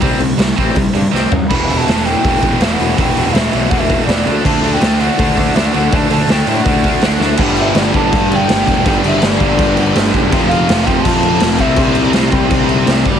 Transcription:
0.01 C2 C3 G3 C4, kick, open hi-hat
0.19 C2 C3 G3, open hi-hat
0.38 C2 C3 G3, snare, open hi-hat
0.56 A1 C3 G3 C4, kick, open hi-hat
0.75 C2 C3 G3, kick, open hi-hat
0.94 G2 C3 G3, open hi-hat
1.12 C2 C3 G3 C4, snare
1.32 F#2 C3 G3, floor tom
1.48 E1 E2 B2 E3 B5, kick, crash
1.67 E1 E2 B2 E3, open hi-hat
1.78 A5
1.87 E1 E2 B2 E3, snare, open hi-hat
2.05 E2 B2 E3 G5, open hi-hat
2.23 E1 E2 B2 E3, kick, open hi-hat
2.42 E1 E2 B2 E3, kick, open hi-hat
2.61 E1 E2 B2 E3 E5, snare, open hi-hat
2.73 F#5
2.80 E1 E2 B2 E3, open hi-hat
2.98 E1 E2 B2 E3 G5, kick, open hi-hat
3.17 E1 E2 B2 E3, open hi-hat
3.34 E1 E2 B2 E3 E5, snare, open hi-hat
3.53 B1 E2 B2 E3, open hi-hat
3.70 E1 E2 B2 E3 F#5, kick, open hi-hat
3.79 E5
3.89 E2 B2 E3, kick, open hi-hat
4.06 E1 E2 B2 E3 D5, open hi-hat
4.10 snare
4.26 D2 D3 A3 D4, open hi-hat
4.44 D2 D3 A3 D4 A5, kick, crash
4.62 D2 D3 A3 D4, open hi-hat
4.73 G5
4.81 D2 D3 A3 D4, snare, open hi-hat
5.00 D3 A3 D4 F#5, open hi-hat
5.18 D2 D3 A3 D4, kick, open hi-hat
5.36 D2 D3 A3 D4, kick, open hi-hat
5.55 D2 D3 A3 D4 E5, snare, open hi-hat
5.66 F#5
5.73 D2 D3 A3 D4 F#5, open hi-hat
5.92 D2 D3 A3 D4 A5, kick, open hi-hat
6.10 D2 D3 A3 D4 A5, open hi-hat
6.28 D2 D3 A3 D4 G5, snare, open hi-hat
6.47 A2 D3 A3 D4 G5, open hi-hat
6.59 F#5
6.65 D2 D3 A3 D4, kick, open hi-hat
6.84 D3 A3 D4, kick, open hi-hat
7.02 D2 D3 A3 D4, snare, open hi-hat
7.20 D2 D3 A3 D4, snare
7.37 G1 G2 D3 G3 B3, kick, crash
7.42 G3 D4 G4
7.56 E5, crash
7.75 G1 D5, snare, crash
7.93 G1 G2 D3 G3 A5, kick, crash
8.12 G2 D3 G3 B3 D4 G4, kick, crash
8.31 G5, crash
8.49 G1, snare, crash
8.67 E1, kick, crash
8.85 G1 G2 D3 G3 B3 D4 G4 G5, kick, crash
9.04 G1 E5, crash
9.22 G1, snare, crash
9.26 D5
9.40 G1 G2 D3 G3, kick, crash
9.57 G1 G2 D3 G3 B3 D4 G4, kick, crash
9.77 crash
9.95 G1, snare, crash
10.14 F#1, kick, crash
10.31 F1 F2 C3 F3 A3 C4 F4, kick, crash
10.48 F5, crash
10.69 F1, snare, crash
10.86 F1 F2 C3 F3 G5, kick, crash
11.02 F2 C3 A5, kick, crash
11.06 F3 A3 C4 F4
11.23 crash
11.40 F1, snare, crash
11.58 C2 C3 G3 C4 E5, kick, crash
11.63 C4 E4
11.76 C2, kick, crash
11.95 C2, crash
12.13 C2 C3 G3 C4, snare, crash
12.32 C2 C3 G3 C4 E4, kick, crash
12.50 C2, kick, crash
12.69 crash
12.86 C2, snare, crash
13.05 F#1, kick, crash

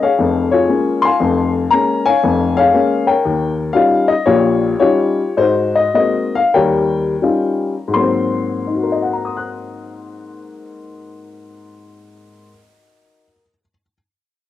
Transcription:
0.03 G#4 C#5 F5
0.18 F1 F2
0.51 F4 G#4 C#5
0.69 G#3 A#3 C#4
1.02 F5 G#5 C6
1.20 F1 F2
1.71 G#3 A#3 C#4 A#5
2.06 C#5 F5 G#5
2.23 F1 F2
2.57 G#4 C#5 F5
2.74 G#3 A#3 C#4
3.07 A#4 C#5 G5
3.25 D#2
3.73 G3 C#4 D#4 F4 F5
4.08 D#5
4.26 A#1 A#2 F4 G4 C#5
4.79 G3 C#4 D#4 F4 G4 C#5
5.37 G#2 D#4 F#4 C5
5.75 D#5
5.94 G#3 A#3 C4 F#4 D#5
6.35 F5
6.54 D#2 G3 A#4 C#5 G5
7.22 G3 C#4 D#4 F4
7.88 G#2 F#3
7.94 A#3 C6
8.00 C4
8.67 D#4
8.75 F#4
8.83 A#4
8.92 D#5
9.02 F#5
9.13 A#5
9.25 D#6
9.37 F#6

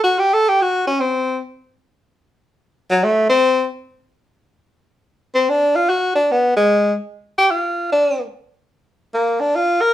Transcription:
0.04 F#4
0.19 G4
0.34 A4
0.49 G4
0.62 F#4
0.87 C#4
1.00 C4
2.91 F#3
3.04 A3
3.29 C4
5.35 C4
5.50 D4
5.76 F4
5.89 F#4
6.15 D4
6.32 B3
6.57 G#3
7.38 G4
7.51 F4
7.92 D4
9.14 A#3
9.40 D4
9.55 F4
9.81 A#4

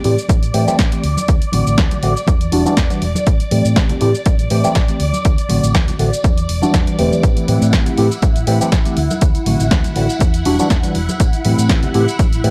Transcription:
Already playing: D5 D6
0.04 A2 E3 A3 C4 G4, open hi-hat
0.17 tambourine, shaker
0.29 A1, kick, closed hi-hat, tambourine, high conga, shaker
0.42 closed hi-hat, tambourine, shaker
0.54 A2 E3 A3 C4 G4, open hi-hat
0.67 E3 A3 C4 G4, muted fingered electric bass stroke, tambourine, high conga, shaker
0.79 A1, kick, snare, closed hi-hat, tambourine, shaker
0.92 E3 A3 C4 G4, closed hi-hat, tambourine, shaker
1.04 D2, open hi-hat
1.17 tambourine, high conga, shaker
1.28 D2, kick, closed hi-hat, shaker
1.41 closed hi-hat, tambourine, shaker
1.52 A1 D3 A3 C4 F#4, open hi-hat, high conga
1.67 A1, tambourine, shaker
1.78 kick, snare, closed hi-hat, shaker
1.91 closed hi-hat, tambourine, high conga, shaker
2.02 A1 D3 A3 C4 F#4, open hi-hat
2.16 tambourine, shaker
2.27 E2, kick, closed hi-hat, tambourine, high conga, shaker
2.41 closed hi-hat, tambourine, shaker
2.52 E1 E3 G3 D4 F#4, open hi-hat
2.65 E3 G3 D4 F#4, muted fingered electric bass stroke, tambourine, high conga, shaker
2.77 E2, kick, snare, closed hi-hat, shaker
2.90 E3 G3 D4 F#4, closed hi-hat, tambourine, shaker
3.02 E1, open hi-hat
3.15 tambourine, high conga, shaker
3.26 A1, kick, closed hi-hat, tambourine, shaker
3.40 closed hi-hat, tambourine, shaker
3.51 A2 E3 A3 C4 G4, open hi-hat, high conga
3.64 A2, tambourine, shaker
3.76 A1, kick, snare, closed hi-hat, shaker
3.89 closed hi-hat, tambourine, high conga, low conga, shaker
4.01 A2 E3 A3 C4 G4, open hi-hat
4.15 tambourine, shaker
4.26 A1, kick, closed hi-hat, tambourine, high conga, shaker
4.39 closed hi-hat, tambourine, shaker
4.50 A2 E3 A3 C4 G4, open hi-hat
4.64 E3 A3 C4 G4, muted fingered electric bass stroke, tambourine, high conga, shaker
4.75 A1, kick, snare, closed hi-hat, shaker
4.88 E3 A3 C4 G4, closed hi-hat, tambourine, shaker
5.00 D2, open hi-hat
5.13 tambourine, high conga, shaker
5.24 D2, kick, closed hi-hat, tambourine, shaker
5.38 closed hi-hat, tambourine, shaker
5.49 A1 D3 A3 C4 F#4, open hi-hat, high conga
5.63 A1, tambourine, shaker
5.75 kick, snare, closed hi-hat, shaker
5.88 closed hi-hat, tambourine, high conga, low conga, shaker
5.99 A1 D3 A3 C4 F#4, open hi-hat
6.13 tambourine, shaker
6.24 E2, kick, closed hi-hat, tambourine, high conga, shaker
6.38 closed hi-hat, tambourine, shaker
6.49 E1, open hi-hat
6.62 E3 G3 D4 F#4, tambourine, high conga, shaker
6.74 E2, kick, snare, closed hi-hat, tambourine, shaker
6.87 closed hi-hat, tambourine, shaker
6.98 E1 E3 A3 C4 G4, open hi-hat, low conga
7.12 tambourine, high conga, shaker
7.23 A1 E4 F#5, kick, closed hi-hat, tambourine, shaker
7.36 closed hi-hat, tambourine, shaker
7.48 A2 E3 A3 C4 G4, open hi-hat, high conga
7.62 A2, tambourine, shaker
7.73 A1, kick, snare, closed hi-hat, tambourine, shaker
7.86 closed hi-hat, tambourine, high conga, low conga, shaker
7.98 A2 E3 A3 C4 G4, open hi-hat
8.11 tambourine, shaker
8.22 A1, kick, closed hi-hat, tambourine, high conga, shaker
8.36 closed hi-hat, tambourine, shaker
8.47 A2 E3 A3 C4 G4, open hi-hat
8.60 E3 A3 C4 G4, muted fingered electric bass stroke, tambourine, high conga, shaker
8.72 A1, kick, snare, closed hi-hat, tambourine, shaker
8.85 E3 A3 C4 G4, closed hi-hat, tambourine, shaker
8.97 D2, open hi-hat
9.10 tambourine, high conga, shaker
9.21 D2, kick, closed hi-hat, tambourine, shaker
9.35 closed hi-hat, tambourine, shaker
9.46 A1 D3 A3 C4 F#4, open hi-hat, high conga
9.59 A1, tambourine, shaker
9.71 kick, snare, closed hi-hat, tambourine, shaker
9.84 closed hi-hat, tambourine, high conga, shaker
9.96 A1 D3 A3 C4 F#4, open hi-hat
10.09 tambourine, shaker
10.19 E2, kick, closed hi-hat, tambourine, high conga, shaker
10.34 closed hi-hat, tambourine, shaker
10.45 E1 E3 G3 D4 F#4, open hi-hat
10.59 E3 G3 D4 F#4, tambourine, high conga, shaker
10.70 E2, kick, snare, closed hi-hat, tambourine, shaker
10.83 E3 G3 D4 F#4, closed hi-hat, tambourine, shaker
10.95 E1, open hi-hat
11.09 tambourine, high conga, shaker
11.20 A1, kick, closed hi-hat, tambourine, shaker
11.33 closed hi-hat, tambourine, shaker
11.45 A2 E3 A3 C4 G4, open hi-hat, high conga
11.58 A2, tambourine, shaker
11.69 A1, kick, snare, closed hi-hat, shaker
11.83 closed hi-hat, tambourine, high conga, low conga, shaker
11.94 A2 E3 A3 C4 G4, open hi-hat
12.08 tambourine, shaker
12.19 A1, kick, closed hi-hat, tambourine, high conga, shaker
12.33 closed hi-hat, tambourine, shaker
12.44 A2 E3 A3 C4 G4, open hi-hat

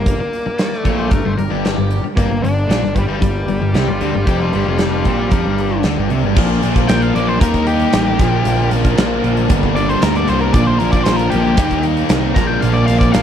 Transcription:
Already playing: G1 G2 A#3 D4 G4 A#4 D5
0.06 kick, closed hi-hat
0.20 muted overdriven electric guitar stroke, muted picked electric bass stroke
0.33 closed hi-hat
0.46 muted overdriven electric guitar stroke, muted picked electric bass stroke
0.59 D5, snare, closed hi-hat
0.73 snare
0.77 A3
0.85 A#1 A#2 C#5, kick, closed hi-hat
0.98 C5
1.11 G1 G2 A#4, kick, closed hi-hat
1.25 G1 G2 C5
1.37 G1 G2 A#4, closed hi-hat
1.50 G1 G2 G4
1.65 G4, snare, closed hi-hat
1.78 G1 G2
1.91 closed hi-hat
2.04 muted picked electric bass stroke, muted overdriven electric guitar stroke
2.16 G1 G2 A#3 D4 G4 A#4 D5, kick, closed hi-hat
2.31 G1 G2
2.42 G1 G2 D4, closed hi-hat
2.69 A#1 A#2, snare, closed hi-hat
2.83 G1 G2, snare
2.95 G1 G2 G3, kick, closed hi-hat
3.08 G1 G2
3.22 G1 G2, kick, closed hi-hat
3.48 G1 G2, closed hi-hat
3.61 G1 G2
3.74 C2 C3 G4, snare, closed hi-hat
3.88 G1 G2 F4
4.01 D2 D3 C4, closed hi-hat
4.14 G1 G2 F4
4.27 F1 F2 G4, kick, closed hi-hat
4.41 F4
4.52 G1 G2 C4, closed hi-hat
4.66 F1 F2 F4
4.78 G4, snare, closed hi-hat
4.91 F4
5.05 A#1 A#2 C4, kick, closed hi-hat
5.16 F4
5.30 F2 F3 A#4, kick, closed hi-hat
5.45 G1 G2
5.58 closed hi-hat
5.83 D2 D3, snare, closed hi-hat
5.97 G1 G2
6.10 C2 C3, closed hi-hat
6.23 G1 G2
6.36 A#1 A#2 F3 A#3 D4 F4 A#4 D5, kick, crash
6.62 A#1 A#3, closed hi-hat
6.76 kick, closed hi-hat
6.88 A#1 A#4 G5, snare, closed hi-hat
7.01 F5, closed hi-hat
7.15 A#1 A#2 F3 A#3 D5, closed hi-hat
7.28 C5
7.40 D#2 D#3 G3 A#3 D#4 G4 A#4, kick, closed hi-hat
7.54 kick, closed hi-hat
7.67 D#4 G4, closed hi-hat
7.80 closed hi-hat
7.92 A1 G3, snare, closed hi-hat
8.19 A#1 A#2 D3 F3 A#3 D4 F4 A#4, kick, snare, closed hi-hat
8.45 A#1 A#2, closed hi-hat
8.71 A#1 A#3, closed hi-hat
8.85 kick, closed hi-hat
8.96 A#1 A#2 F3 A#4, snare, closed hi-hat
9.01 A#3
9.23 A#1 A#3, closed hi-hat
9.37 closed hi-hat
9.49 G1 G2 D3 G3 A#3 D4 G4 A#4, kick, closed hi-hat
9.63 kick
9.75 D4 D5, closed hi-hat
9.89 C5, closed hi-hat
10.00 D2 G3 A#4, snare, closed hi-hat
10.15 D5, closed hi-hat
10.28 C2 D3 G3 A#3 C5, snare, closed hi-hat
10.32 G2
10.41 A#4
10.53 A#1 A#2 D3 F3 A#3 D4 F4 A#4 D5, kick, closed hi-hat
10.67 C5
10.79 A#1 A#3 A#4, closed hi-hat
10.92 D5, kick, closed hi-hat
11.03 A#1 A#4 C5, snare, closed hi-hat
11.16 A#4, closed hi-hat
11.30 A#1 F3 A#3 G4, closed hi-hat
11.35 A#2
11.57 D#2 D#3 G3 A#3 D#4 G4 A#4, kick, closed hi-hat
11.70 kick, closed hi-hat
11.83 D#4, closed hi-hat
11.97 closed hi-hat
12.09 C2 G3, snare, closed hi-hat
12.33 A#1 A#2 D3 F3 A#3 D4 F4 A#4 A#5, kick, snare, closed hi-hat
12.38 D4
12.47 G5
12.61 A#1 A#2 F5, closed hi-hat
12.73 D5
12.86 A#1 A#3 F5, closed hi-hat
12.99 D5, kick, closed hi-hat
13.12 A#1 A#2 F3 A#4 F5, snare, closed hi-hat
13.17 A#3

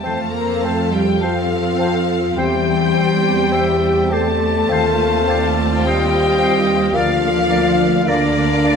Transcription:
Already playing: C4
0.00 C4 A5
0.05 F2 F3 A3 C4 A4 C5 F5 A5
0.32 A#3 A#4 A#5
0.63 A3 C4 A4 C5 A5
0.93 G3 G4 G5
1.21 F3 C4 F4 A4 C5 F5 A5
1.79 C4 C5 A5
2.35 E2 E3 G3 C4 G4 C5 G5
2.94 C4 C5 G5
3.52 C4 G4 C5 E5 G5
4.10 A3 C4 A4 C5 D5 G5 A5
4.69 D#2 D#3 C4 F4 C5 F5
5.27 C4 C5 D5 F5
5.83 G3 C4 F4 G4 F5 G5
5.87 C5 D#5
6.38 C4 C5 F5
6.42 C5
6.93 D2 D3 F3 A#3 D4 F4 D5 F5
7.49 A#3 D5 F5
8.06 D3 A#3 D4 F4 A#4 D5 F5
8.64 A3 A#3 D5 F5

